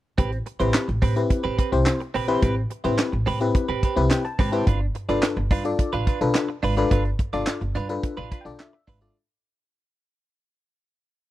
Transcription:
0.18 upright bass A1, clean electric guitar C4 G4 B4, kick, closed hi-hat
0.32 muted clean electric guitar stroke, closed hi-hat
0.46 muted clean electric guitar stroke, closed hi-hat
0.59 upright bass A1, fm electric piano C4 E4 G4 B4, clean electric guitar C4 G4 C5, closed hi-hat
0.74 snare, clap, closed hi-hat
0.88 upright bass A1, muted clean electric guitar stroke, closed hi-hat
1.02 upright bass A2, clean electric guitar C4 G4 B4, kick, open hi-hat
1.16 fm electric piano C4 E4 G4 B4, muted clean electric guitar stroke, closed hi-hat
1.30 muted clean electric guitar stroke, kick, closed hi-hat
1.44 upright bass A1, clean electric guitar C4 G4 B4
1.58 clean electric guitar C4 G4 B4, kick, closed hi-hat
1.72 upright bass C2, fm electric piano C4 E4 G4 C5, muted clean electric guitar stroke, closed hi-hat
1.86 muted clean electric guitar stroke, snare, clap, closed hi-hat
2.01 muted clean electric guitar stroke, closed hi-hat
2.14 upright bass A#1, clean electric guitar C4 G4 B4, open hi-hat
2.28 fm electric piano C4 E4 G4 B4, clean electric guitar C4 G4 C5, closed hi-hat
2.42 upright bass A1, clean electric guitar C4 G4 B4, kick, closed hi-hat
2.56 muted clean electric guitar stroke
2.70 muted clean electric guitar stroke, closed hi-hat
2.84 upright bass A1, fm electric piano C4 E4 G4 B4, clean electric guitar C4 G4 C5, closed hi-hat
2.99 snare, clap, closed hi-hat
3.13 upright bass A1, muted clean electric guitar stroke
3.26 upright bass A2, clean electric guitar C4 G4 B4, open hi-hat
3.41 fm electric piano C4 E4 G4 B4, muted clean electric guitar stroke, closed hi-hat
3.55 muted clean electric guitar stroke, kick, closed hi-hat
3.69 upright bass A1, clean electric guitar C4 G4 B4
3.83 clean electric guitar C4 G4 B4, kick, closed hi-hat
3.96 upright bass C2, fm electric piano C4 E4 G4 B4, muted clean electric guitar stroke, closed hi-hat
4.11 fm electric piano G5, muted clean electric guitar stroke, snare, clap, closed hi-hat
4.25 fm electric piano A5, muted clean electric guitar stroke, closed hi-hat
4.39 upright bass G#1, clean electric guitar C4 G4 B4, kick, open hi-hat
4.52 fm electric piano C4 E4 G4 B4, clean electric guitar C4 G4 C5, closed hi-hat
4.67 upright bass G1, clean electric guitar D4 F4 B4, kick, closed hi-hat
4.81 muted clean electric guitar stroke
4.95 muted clean electric guitar stroke, closed hi-hat
5.09 upright bass G1, fm electric piano D4 F4 A4 B4, clean electric guitar D4 F4 D5, closed hi-hat
5.23 snare, clap, closed hi-hat
5.37 upright bass G1, muted clean electric guitar stroke
5.51 upright bass G2, clean electric guitar D4 F4 B4, kick, open hi-hat
5.65 fm electric piano D4 F4 A4 D5, muted clean electric guitar stroke, closed hi-hat
5.79 muted clean electric guitar stroke, kick, closed hi-hat
5.93 upright bass A1, clean electric guitar D4 F4 B4, closed hi-hat
6.07 clean electric guitar D4 F4 B4, kick, closed hi-hat
6.21 upright bass B1, fm electric piano D4 F4 A4 B4, muted clean electric guitar stroke, closed hi-hat
6.35 muted clean electric guitar stroke, snare, clap, closed hi-hat
6.49 muted clean electric guitar stroke
6.63 upright bass G#1, clean electric guitar D4 F4 B4, open hi-hat
6.77 fm electric piano D4 F4 A4 B4, clean electric guitar D4 F4 D5, closed hi-hat
6.91 upright bass G1, clean electric guitar D4 F4 B4, kick, closed hi-hat
7.05 muted clean electric guitar stroke, closed hi-hat
7.19 muted clean electric guitar stroke, kick, closed hi-hat
7.33 upright bass G1, fm electric piano D4 F4 A4 D5, clean electric guitar D4 F4 D5, closed hi-hat
7.47 snare, clap, closed hi-hat
7.61 upright bass G1, muted clean electric guitar stroke, closed hi-hat
7.75 upright bass G2, clean electric guitar D4 F4 B4, closed hi-hat
7.89 fm electric piano D4 F4 A4 B4, muted clean electric guitar stroke, closed hi-hat
8.03 muted clean electric guitar stroke, kick, closed hi-hat
8.17 upright bass A1, clean electric guitar D4 F4 B4
8.31 clean electric guitar D4 F4 B4, fm electric piano B5, kick, closed hi-hat
8.41 fm electric piano G5
8.45 upright bass B1, fm electric piano D4 F4 A4 D5, muted clean electric guitar stroke, closed hi-hat
8.59 fm electric piano E5, muted clean electric guitar stroke, snare, clap, closed hi-hat
8.73 muted clean electric guitar stroke
8.87 upright bass G#1, clean electric guitar D4 F4 B4, kick, open hi-hat
9.01 fm electric piano D4 F4 A4 D5, clean electric guitar D4 D5

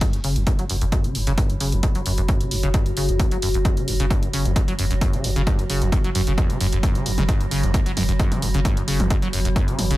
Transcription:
Already playing: synth drone F#3
0.01 acid bass G2, kick, closed hi-hat
0.13 sub bass F#1, acid bass F#2, closed hi-hat
0.24 sub bass F#1, acid bass C#3, open hi-hat
0.36 sub bass F#1, acid bass E2, closed hi-hat
0.47 acid bass F#2, kick, closed hi-hat
0.59 sub bass F#1, acid bass F#3, closed hi-hat
0.69 sub bass F#1, acid bass F#2, open hi-hat
0.81 sub bass F#1, acid bass F#2, closed hi-hat
0.92 acid bass F#2, kick, closed hi-hat
1.04 sub bass F#1, acid bass C#3, closed hi-hat
1.15 sub bass F#1, acid bass F#2, open hi-hat
1.27 sub bass F#1, acid bass C#3, closed hi-hat
1.38 acid bass G2, kick, closed hi-hat
1.50 sub bass F#1, acid bass F#2, closed hi-hat
1.60 sub bass F#1, acid bass C#3, open hi-hat
1.72 sub bass F#1, acid bass E2, closed hi-hat
1.83 acid bass F#2, kick, closed hi-hat
1.95 sub bass F#1, acid bass F#3, closed hi-hat
2.06 sub bass F#1, acid bass F#2, open hi-hat
2.18 sub bass F#1, acid bass F#2, closed hi-hat
2.28 acid bass F#2, kick, closed hi-hat
2.41 sub bass F#1, acid bass C#3, closed hi-hat
2.51 sub bass F#1, acid bass F#2, open hi-hat
2.63 sub bass F#1, acid bass C#3, closed hi-hat
2.74 acid bass G2, kick, closed hi-hat
2.86 sub bass F#1, acid bass F#2, closed hi-hat
2.97 sub bass F#1, acid bass C#3, open hi-hat
3.09 sub bass F#1, acid bass E2, closed hi-hat
3.19 acid bass F#2, kick, closed hi-hat
3.31 sub bass F#1, acid bass F#3, closed hi-hat
3.42 sub bass F#1, acid bass F#2, open hi-hat
3.54 sub bass F#1, acid bass F#2, closed hi-hat
3.65 acid bass F#2, kick, closed hi-hat
3.77 sub bass F#1, acid bass C#3, closed hi-hat
3.88 sub bass F#1, acid bass F#2, open hi-hat
4.00 sub bass F#1, acid bass C#3, closed hi-hat
4.10 acid bass G2, kick, closed hi-hat
4.22 sub bass F#1, acid bass F#2, closed hi-hat
4.33 sub bass F#1, acid bass C#3, open hi-hat
4.45 sub bass F#1, acid bass E2, closed hi-hat
4.56 acid bass F#2, kick, closed hi-hat
4.68 sub bass F#1, acid bass F#3, closed hi-hat
4.79 sub bass F#1, acid bass F#2, open hi-hat
4.91 sub bass F#1, acid bass F#2, closed hi-hat
5.01 acid bass F#2, kick, closed hi-hat
5.13 sub bass F#1, acid bass C#3, closed hi-hat
5.24 sub bass F#1, acid bass F#2, open hi-hat
5.36 sub bass F#1, acid bass C#3, closed hi-hat
5.47 acid bass G2, kick, closed hi-hat
5.59 sub bass F#1, acid bass F#2, closed hi-hat
5.70 sub bass F#1, acid bass C#3, open hi-hat
5.82 sub bass F#1, acid bass E2, closed hi-hat
5.92 acid bass F#2, kick, closed hi-hat
6.04 sub bass F#1, acid bass F#3, closed hi-hat
6.15 sub bass F#1, acid bass F#2, open hi-hat
6.27 sub bass F#1, acid bass C#3, closed hi-hat
6.38 acid bass E2, kick, closed hi-hat
6.50 sub bass F#1, acid bass C#3, closed hi-hat
6.60 sub bass F#1, acid bass F#2, open hi-hat
6.72 sub bass F#1, acid bass F#2, closed hi-hat
6.83 acid bass F#2, kick, closed hi-hat
6.95 sub bass F#1, acid bass C#3, closed hi-hat
7.06 sub bass F#1, acid bass F#2, open hi-hat
7.18 sub bass F#1, acid bass C#3, closed hi-hat, mid tom
7.29 acid bass G2, kick, closed hi-hat
7.40 sub bass F#1, acid bass F#2, closed hi-hat
7.51 sub bass F#1, acid bass C#3, open hi-hat
7.63 sub bass F#1, acid bass E2, closed hi-hat
7.74 acid bass F#2, kick, closed hi-hat
7.86 sub bass F#1, acid bass F#3, closed hi-hat
7.97 sub bass F#1, acid bass F#2, open hi-hat, mid tom
8.09 sub bass F#1, acid bass F#2, closed hi-hat
8.19 acid bass F#2, kick, closed hi-hat
8.31 sub bass F#1, acid bass C#3, closed hi-hat, mid tom
8.42 sub bass F#1, acid bass F#2, open hi-hat
8.54 sub bass F#1, acid bass C#3, closed hi-hat
8.65 acid bass G2, kick, closed hi-hat
8.77 sub bass F#1, acid bass F#2, closed hi-hat
8.87 sub bass F#1, acid bass C#3, open hi-hat
9.00 sub bass F#1, acid bass E2, closed hi-hat, mid tom
9.10 acid bass F#2, kick, closed hi-hat
9.22 sub bass F#1, acid bass F#3, closed hi-hat
9.33 sub bass F#1, acid bass F#2, open hi-hat
9.45 sub bass F#1, acid bass F#2, closed hi-hat
9.56 acid bass F#2, kick, closed hi-hat
9.68 sub bass F#1, acid bass C#3, closed hi-hat
9.79 sub bass F#1, acid bass F#2, open hi-hat, mid tom
9.91 sub bass F#1, acid bass C#3, closed hi-hat

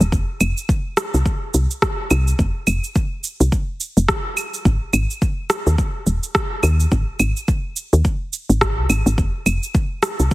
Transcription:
0.00 fm bass D#1, cabasa
0.12 fm bass F1, kick, cabasa
0.40 fm bass F1, cabasa, claves
0.57 cabasa
0.69 kick, cabasa
0.97 cross-stick, cabasa
1.14 fm bass C2, cabasa
1.26 kick, cabasa
1.54 fm bass C2, cabasa
1.71 cabasa
1.82 kick, cross-stick, cabasa
2.10 fm bass C2, cabasa, claves
2.28 cabasa
2.39 fm bass F1, kick, cabasa
2.67 fm bass F1, cabasa, claves
2.84 cabasa
2.95 kick, cabasa
3.24 cabasa
3.40 fm bass C2, cabasa
3.52 kick, cabasa
3.80 cabasa
3.97 fm bass F1, cabasa
4.08 kick, cross-stick, cabasa
4.37 cabasa, claves
4.54 cabasa
4.65 fm bass G#1, kick, cabasa
4.93 fm bass G#1, cabasa, claves
5.10 cabasa
5.22 kick, cabasa
5.50 cross-stick, cabasa
5.67 fm bass D#2, cabasa
5.78 kick, cabasa
6.07 fm bass D#1, cabasa
6.23 cabasa
6.35 kick, cross-stick, cabasa
6.63 fm bass D#2, cabasa, claves
6.80 cabasa
6.92 fm bass G#1, kick, cabasa
7.19 fm bass G#1, cabasa, claves
7.37 cabasa
7.48 kick, cabasa
7.76 cabasa
7.93 fm bass D#2, cabasa
8.05 kick, cabasa
8.33 cabasa
8.49 fm bass G#1, cabasa
8.61 kick, cross-stick, cabasa
8.78 fm bass C2
8.89 fm bass G#1, cabasa, claves
9.06 fm bass G#1, cabasa
9.18 fm bass F1, kick, cabasa
9.46 fm bass F1, cabasa, claves
9.63 cabasa
9.75 kick, cabasa
10.03 cross-stick, cabasa
10.20 fm bass C2, cabasa
10.31 cabasa

